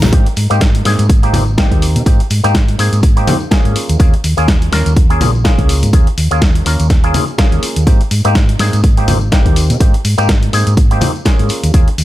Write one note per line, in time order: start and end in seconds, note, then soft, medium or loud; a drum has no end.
0.00 0.11 A#1 loud
0.00 0.14 A#4 medium
0.00 0.14 A#5 medium
0.00 snare medium
0.00 closed hi-hat medium
0.00 tambourine medium
0.00 high conga medium
0.00 low conga medium
0.12 0.24 G#2 medium
0.12 0.27 A#3 medium
0.12 0.27 C4 medium
0.12 0.27 D#4 medium
0.12 0.27 G4 medium
0.12 kick loud
0.12 closed hi-hat medium
0.26 closed hi-hat soft
0.36 0.48 G#2 medium
0.36 open hi-hat medium
0.36 tambourine medium
0.50 0.83 G#2 medium
0.50 0.62 A#3 medium
0.50 0.62 C4 medium
0.50 0.62 D#4 medium
0.50 0.62 G4 loud
0.50 closed hi-hat soft
0.50 tambourine medium
0.61 kick loud
0.61 snare loud
0.61 closed hi-hat medium
0.75 closed hi-hat medium
0.85 0.97 G#2 medium
0.85 1.06 A#3 medium
0.85 1.07 C4 medium
0.85 1.07 D#4 medium
0.85 1.07 G#4 medium
0.85 snare medium
0.85 open hi-hat loud
0.85 tambourine medium
0.99 1.31 G#2 medium
0.99 closed hi-hat soft
0.99 tambourine medium
1.09 kick loud
1.09 closed hi-hat medium
1.09 tambourine soft
1.23 1.43 A#3 medium
1.23 1.44 C4 medium
1.23 1.44 D#4 medium
1.23 1.44 G4 medium
1.23 closed hi-hat soft
1.33 1.68 G#1 medium
1.33 open hi-hat loud
1.33 tambourine medium
1.33 high conga medium
1.33 low conga medium
1.48 tambourine soft
1.58 2.04 A#3 medium
1.58 2.04 C4 medium
1.58 2.04 D#4 medium
1.58 2.04 G4 medium
1.58 kick loud
1.58 snare loud
1.58 closed hi-hat medium
1.71 1.97 D#2 medium
1.71 kick medium
1.71 closed hi-hat soft
1.82 open hi-hat loud
1.82 tambourine loud
1.96 2.05 C3 medium
1.96 closed hi-hat soft
1.96 tambourine medium
2.06 2.18 G#2 medium
2.06 2.21 A#3 medium
2.06 2.21 C4 medium
2.06 2.21 D#4 medium
2.06 2.21 G4 medium
2.06 kick loud
2.06 closed hi-hat medium
2.06 tambourine soft
2.20 closed hi-hat soft
2.30 2.42 G#2 medium
2.30 open hi-hat loud
2.30 tambourine medium
2.44 2.76 G#2 medium
2.44 2.55 A#3 medium
2.44 2.56 C4 medium
2.44 2.56 D#4 medium
2.44 2.56 G4 medium
2.44 closed hi-hat soft
2.44 tambourine medium
2.55 kick loud
2.55 snare loud
2.55 closed hi-hat medium
2.68 closed hi-hat soft
2.79 2.90 G#2 medium
2.79 3.00 A#3 medium
2.79 3.00 C4 medium
2.79 3.00 D#4 medium
2.79 3.00 G#4 medium
2.79 open hi-hat loud
2.79 tambourine loud
2.93 3.25 G#2 medium
2.93 closed hi-hat soft
2.93 tambourine soft
3.03 kick loud
3.03 closed hi-hat medium
3.03 tambourine soft
3.16 3.37 A#3 medium
3.16 3.37 C4 medium
3.16 3.37 D#4 medium
3.16 3.37 G4 medium
3.16 closed hi-hat soft
3.27 open hi-hat loud
3.27 tambourine medium
3.27 high conga medium
3.27 low conga loud
3.40 tambourine medium
3.51 3.97 A#3 medium
3.51 3.97 C#4 medium
3.51 3.97 F4 medium
3.51 3.97 G#4 medium
3.51 kick loud
3.51 snare loud
3.51 closed hi-hat medium
3.65 3.74 G#2 medium
3.65 closed hi-hat soft
3.76 muted fingered electric bass stroke soft
3.76 open hi-hat loud
3.76 tambourine medium
3.89 3.98 D#2 medium
3.89 closed hi-hat soft
3.89 tambourine medium
3.99 4.14 A#3 medium
3.99 4.14 C#4 medium
3.99 4.14 F4 medium
3.99 4.14 G#4 medium
3.99 kick loud
3.99 closed hi-hat medium
4.14 closed hi-hat soft
4.24 4.36 D#2 medium
4.24 open hi-hat loud
4.24 tambourine medium
4.37 4.70 D#2 medium
4.37 4.49 A#3 medium
4.37 4.49 C#4 medium
4.37 4.49 F4 medium
4.37 4.49 G#4 loud
4.37 closed hi-hat soft
4.37 tambourine soft
4.48 kick loud
4.48 snare loud
4.48 closed hi-hat medium
4.62 closed hi-hat soft
4.72 4.84 D#2 medium
4.72 4.93 A#3 medium
4.72 4.94 C#4 medium
4.72 4.94 F4 medium
4.72 4.94 A#4 medium
4.72 snare medium
4.72 open hi-hat loud
4.72 tambourine medium
4.86 5.18 D#2 medium
4.86 closed hi-hat soft
4.86 tambourine medium
4.96 kick loud
4.96 closed hi-hat medium
5.10 5.30 A#3 medium
5.10 5.31 C#4 medium
5.10 5.31 F4 medium
5.10 5.31 G#4 medium
5.10 closed hi-hat soft
5.21 5.55 A#1 medium
5.21 open hi-hat loud
5.21 tambourine medium
5.21 high conga medium
5.21 low conga loud
5.35 tambourine medium
5.44 5.91 A#3 medium
5.44 5.91 C#4 medium
5.44 5.91 F4 medium
5.44 5.91 G#4 medium
5.44 kick loud
5.44 snare loud
5.44 closed hi-hat medium
5.58 5.84 C#2 medium
5.58 kick medium
5.58 closed hi-hat soft
5.69 open hi-hat loud
5.69 tambourine medium
5.83 5.92 G#2 medium
5.83 closed hi-hat soft
5.83 tambourine medium
5.93 6.08 A#3 medium
5.93 6.08 C#4 medium
5.93 6.08 F4 medium
5.93 6.08 G#4 medium
5.93 kick loud
5.93 closed hi-hat medium
6.07 closed hi-hat soft
6.18 6.29 D#2 medium
6.18 open hi-hat loud
6.18 tambourine medium
6.31 6.63 D#2 medium
6.31 6.43 A#3 medium
6.31 6.43 C#4 medium
6.31 6.43 F4 medium
6.31 6.43 G#4 medium
6.31 closed hi-hat soft
6.31 tambourine soft
6.42 kick loud
6.42 snare loud
6.42 closed hi-hat medium
6.55 closed hi-hat soft
6.66 6.78 D#2 medium
6.66 6.87 A#3 medium
6.66 6.87 C#4 medium
6.66 6.87 F4 medium
6.66 6.88 A#4 medium
6.66 open hi-hat loud
6.66 tambourine medium
6.80 7.12 D#2 medium
6.80 closed hi-hat soft
6.80 tambourine medium
6.90 kick loud
6.90 snare medium
6.90 closed hi-hat medium
6.90 tambourine soft
7.03 7.24 A#3 medium
7.03 7.24 C#4 medium
7.03 7.24 F4 medium
7.03 7.24 G#4 medium
7.03 closed hi-hat soft
7.14 open hi-hat loud
7.14 tambourine medium
7.14 high conga medium
7.14 low conga medium
7.28 tambourine soft
7.38 7.84 A#3 medium
7.38 7.84 C#4 medium
7.38 7.84 F4 medium
7.38 7.85 G#4 medium
7.38 kick loud
7.38 snare loud
7.38 closed hi-hat medium
7.38 tambourine soft
7.52 7.61 D#2 medium
7.52 closed hi-hat soft
7.63 muted fingered electric bass stroke soft
7.63 open hi-hat loud
7.63 tambourine medium
7.76 7.85 D#2 medium
7.76 closed hi-hat soft
7.76 tambourine medium
7.87 7.98 G#2 medium
7.87 8.01 A#3 medium
7.87 8.01 C4 medium
7.87 8.02 D#4 medium
7.87 8.02 G4 medium
7.87 kick loud
7.87 closed hi-hat medium
8.01 closed hi-hat soft
8.11 8.23 G#2 medium
8.11 open hi-hat loud
8.11 tambourine medium
8.24 8.57 G#2 medium
8.24 8.36 A#3 medium
8.24 8.36 C4 medium
8.24 8.37 D#4 medium
8.24 8.37 G4 medium
8.24 closed hi-hat soft
8.24 tambourine soft
8.35 kick loud
8.35 snare loud
8.35 closed hi-hat medium
8.35 tambourine soft
8.49 closed hi-hat soft
8.59 8.71 G#2 medium
8.59 8.81 A#3 medium
8.59 8.81 C4 medium
8.59 8.81 D#4 medium
8.59 8.81 G#4 medium
8.59 snare medium
8.59 open hi-hat loud
8.59 tambourine loud
8.73 9.05 G#2 medium
8.73 closed hi-hat soft
8.73 tambourine soft
8.84 kick loud
8.84 closed hi-hat medium
8.97 9.18 A#3 medium
8.97 9.18 C4 medium
8.97 9.18 D#4 medium
8.97 9.18 G4 medium
8.97 closed hi-hat soft
9.08 9.43 G#1 medium
9.08 open hi-hat loud
9.08 tambourine medium
9.08 high conga medium
9.08 low conga medium
9.21 tambourine medium
9.32 9.78 A#3 medium
9.32 9.78 C4 medium
9.32 9.78 D#4 medium
9.32 9.78 G4 medium
9.32 kick loud
9.32 snare loud
9.32 closed hi-hat medium
9.32 tambourine soft
9.46 9.72 D#2 medium
9.46 kick medium
9.46 closed hi-hat soft
9.56 open hi-hat loud
9.56 tambourine medium
9.70 9.79 C3 loud
9.70 closed hi-hat soft
9.70 tambourine medium
9.80 9.92 G#2 medium
9.80 9.95 A#3 medium
9.80 9.95 C4 medium
9.80 9.95 D#4 medium
9.80 9.95 G4 medium
9.80 kick loud
9.80 closed hi-hat medium
9.94 closed hi-hat soft
10.05 10.16 G#2 medium
10.05 open hi-hat loud
10.05 tambourine medium
10.18 10.51 G#2 medium
10.18 10.30 A#3 medium
10.18 10.30 C4 medium
10.18 10.30 D#4 medium
10.18 10.30 G4 loud
10.18 closed hi-hat soft
10.18 tambourine medium
10.29 kick loud
10.29 snare loud
10.29 closed hi-hat medium
10.29 tambourine soft
10.43 closed hi-hat soft
10.53 10.65 G#2 medium
10.53 10.74 A#3 medium
10.53 10.74 C4 medium
10.53 10.74 D#4 medium
10.53 10.75 G#4 medium
10.53 open hi-hat loud
10.53 tambourine medium
10.67 10.99 G#2 medium
10.67 closed hi-hat soft
10.67 tambourine medium
10.77 kick loud
10.77 closed hi-hat medium
10.77 tambourine soft
10.91 11.11 A#3 medium
10.91 11.11 C4 medium
10.91 11.12 D#4 medium
10.91 11.12 G4 medium
10.91 closed hi-hat soft
11.01 open hi-hat loud
11.01 tambourine medium
11.01 high conga medium
11.01 low conga medium
11.16 tambourine soft
11.25 11.71 A#3 medium
11.25 11.71 C#4 medium
11.25 11.72 F4 medium
11.25 11.72 G#4 medium
11.25 kick loud
11.25 snare loud
11.25 closed hi-hat medium
11.25 tambourine soft
11.39 11.48 G#2 medium
11.39 closed hi-hat soft
11.49 muted fingered electric bass stroke soft
11.49 open hi-hat loud
11.49 tambourine medium
11.63 11.72 D#2 medium
11.63 closed hi-hat medium
11.63 tambourine soft
11.74 11.88 A#3 medium
11.74 11.88 C#4 medium
11.74 11.89 F4 medium
11.74 11.89 G#4 medium
11.74 kick loud
11.74 closed hi-hat medium
11.88 closed hi-hat soft
11.98 12.04 D#2 medium
11.98 open hi-hat medium
11.98 tambourine loud